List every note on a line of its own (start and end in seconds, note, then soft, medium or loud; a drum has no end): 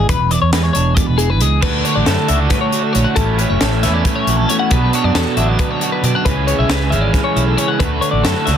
0.00 0.13 D4 medium
0.09 0.36 E1 medium
0.09 1.61 E2 medium
0.09 0.31 B4 medium
0.09 kick medium
0.09 closed hi-hat medium
0.31 1.17 E3 medium
0.31 0.41 D5 medium
0.31 closed hi-hat medium
0.42 0.69 E2 medium
0.42 0.52 C#5 medium
0.53 1.40 G#3 medium
0.53 0.63 B4 medium
0.53 snare loud
0.53 closed hi-hat medium
0.63 0.72 C#5 medium
0.73 1.02 E1 medium
0.73 1.61 D4 medium
0.73 0.95 C#5 medium
0.73 closed hi-hat medium
0.95 1.18 B2 medium
0.95 1.07 D5 medium
0.95 kick medium
0.95 closed hi-hat medium
1.07 1.41 E1 medium
1.07 1.18 B4 medium
1.18 1.60 E3 medium
1.18 1.30 G#4 medium
1.18 closed hi-hat medium
1.30 1.42 B4 medium
1.41 1.59 C#2 medium
1.41 1.60 G#3 medium
1.41 1.62 G#4 medium
1.41 closed hi-hat medium
1.62 3.17 D2 medium
1.62 1.81 D2 medium
1.62 2.27 D3 medium
1.62 2.30 A3 medium
1.62 2.28 D4 medium
1.62 2.28 F#4 medium
1.62 1.85 B4 medium
1.62 kick medium
1.62 crash medium
1.84 1.96 B3 medium
1.84 1.96 C#5 medium
1.84 closed hi-hat medium
1.95 2.05 A1 medium
1.95 2.07 D5 medium
2.06 2.16 F#2 medium
2.06 2.73 E4 medium
2.06 2.28 A4 medium
2.06 snare loud
2.06 closed hi-hat medium
2.28 2.47 C#2 medium
2.28 3.17 D3 medium
2.28 3.16 D3 medium
2.28 3.17 A3 medium
2.28 3.16 D4 medium
2.28 3.18 F#4 medium
2.28 2.40 E5 medium
2.28 closed hi-hat medium
2.40 2.51 D5 medium
2.50 2.61 B4 medium
2.50 kick medium
2.50 snare soft
2.50 closed hi-hat medium
2.61 2.83 C#5 medium
2.72 3.62 F#4 medium
2.72 closed hi-hat medium
2.83 2.93 A4 medium
2.93 3.04 A#1 medium
2.93 3.16 A2 medium
2.93 3.15 C#4 medium
2.93 3.05 C#5 medium
2.93 closed hi-hat medium
3.04 3.16 F#5 medium
3.15 3.44 A1 medium
3.15 3.80 A2 medium
3.15 4.49 A2 medium
3.15 3.82 E3 medium
3.15 3.83 A3 medium
3.15 3.82 C#4 medium
3.15 3.83 E4 medium
3.15 3.38 A4 medium
3.15 kick medium
3.15 closed hi-hat medium
3.38 3.84 C#4 medium
3.38 3.49 B4 medium
3.38 closed hi-hat medium
3.50 3.59 F#1 medium
3.50 3.61 C#5 medium
3.61 3.85 A1 medium
3.61 3.83 A4 medium
3.61 4.28 A4 soft
3.61 snare loud
3.61 closed hi-hat medium
3.82 4.02 E2 loud
3.82 4.69 A2 medium
3.82 4.70 E3 medium
3.82 4.69 E3 medium
3.82 4.70 A3 medium
3.82 3.95 B3 medium
3.82 4.70 C#4 medium
3.82 4.71 E4 medium
3.82 3.94 E5 medium
3.82 snare soft
3.82 closed hi-hat medium
3.94 4.49 C#4 soft
3.94 4.04 D5 medium
4.04 4.15 B4 medium
4.04 kick medium
4.04 closed hi-hat medium
4.16 4.37 C#5 medium
4.27 4.45 A#1 medium
4.27 4.70 F#4 medium
4.27 closed hi-hat medium
4.37 4.49 A4 medium
4.49 4.69 E2 medium
4.49 4.69 C#4 medium
4.49 4.59 C#5 medium
4.49 closed hi-hat medium
4.59 4.71 F#5 medium
4.70 4.89 B1 medium
4.70 5.36 B2 medium
4.70 5.38 B2 medium
4.70 5.36 F#3 medium
4.70 5.38 B3 loud
4.70 5.37 D4 medium
4.70 5.36 F#4 medium
4.70 4.94 B4 medium
4.70 kick medium
4.70 closed hi-hat medium
4.93 5.38 D4 medium
4.93 5.04 C#5 medium
4.93 closed hi-hat medium
5.04 5.13 F#2 medium
5.04 5.15 D5 medium
5.15 5.24 E2 medium
5.15 5.82 F#4 medium
5.15 5.38 A4 medium
5.15 snare loud
5.15 closed hi-hat medium
5.37 5.55 A1 medium
5.37 6.25 B2 medium
5.37 6.26 D3 medium
5.37 6.25 F#3 medium
5.37 6.25 B3 medium
5.37 6.25 D4 medium
5.37 6.04 D4 medium
5.37 6.24 F#4 medium
5.37 5.49 E5 medium
5.37 closed hi-hat medium
5.49 5.60 D5 medium
5.59 5.71 B4 medium
5.59 kick medium
5.59 closed hi-hat medium
5.71 5.92 C#5 medium
5.81 6.24 F#4 medium
5.81 closed hi-hat medium
5.92 6.04 B4 medium
6.03 6.24 F#2 medium
6.03 6.12 B2 medium
6.03 6.16 B3 medium
6.03 6.15 D5 medium
6.03 closed hi-hat medium
6.15 6.26 D4 soft
6.15 6.26 F#5 medium
6.25 6.53 C#2 medium
6.25 6.90 C#3 medium
6.25 6.92 C#3 medium
6.25 6.91 E3 medium
6.25 6.91 G#3 medium
6.25 6.94 C#4 medium
6.25 6.92 G#4 medium
6.25 6.47 B4 medium
6.25 kick medium
6.25 closed hi-hat medium
6.47 6.60 B3 medium
6.47 6.59 C#5 medium
6.47 closed hi-hat medium
6.58 6.68 B1 medium
6.58 6.91 C#4 soft
6.58 6.70 E5 medium
6.69 7.35 E4 soft
6.69 6.92 B4 medium
6.69 snare loud
6.69 closed hi-hat medium
6.90 7.10 G#1 medium
6.90 7.79 C#3 medium
6.90 7.78 E3 medium
6.90 7.79 E3 medium
6.90 7.80 G#3 medium
6.90 7.58 C#4 medium
6.90 7.02 E5 medium
6.90 closed hi-hat medium
6.94 7.81 C#4 medium
6.94 7.80 G#4 medium
7.01 7.13 D5 medium
7.13 7.24 B4 medium
7.13 kick loud
7.13 snare soft
7.13 closed hi-hat medium
7.24 7.46 C#5 medium
7.36 7.54 B1 medium
7.36 7.80 E4 medium
7.36 closed hi-hat medium
7.46 7.58 A4 medium
7.58 7.77 C#3 medium
7.58 7.82 C#4 soft
7.58 7.69 C#5 medium
7.58 closed hi-hat medium
7.68 7.80 F#5 medium
7.79 8.57 D2 medium
7.79 7.98 D2 medium
7.79 8.45 D3 medium
7.79 8.48 A3 medium
7.79 8.46 D4 medium
7.79 8.46 F#4 medium
7.79 8.02 B4 medium
7.79 kick medium
7.79 closed hi-hat medium
8.01 8.13 B3 medium
8.01 8.11 C#5 medium
8.01 closed hi-hat medium
8.11 8.22 A1 medium
8.11 8.23 D5 medium
8.23 8.33 F#2 medium
8.23 8.57 E4 medium
8.23 8.46 A4 medium
8.23 snare loud
8.23 closed hi-hat medium
8.46 8.57 C#2 medium
8.46 8.57 D3 medium
8.46 8.57 A3 medium
8.46 8.57 D4 medium
8.46 8.57 F#4 medium
8.46 8.56 E5 medium
8.46 snare soft
8.46 closed hi-hat medium